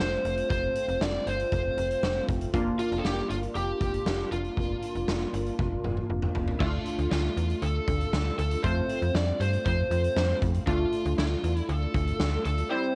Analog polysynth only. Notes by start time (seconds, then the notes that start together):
Already playing: A3 C4 F4
2.54 A#3 D4 F4
6.60 A3 D4 F4
8.64 A3 C4 F4
10.67 A3 D4 F4
12.71 G3 C4 E4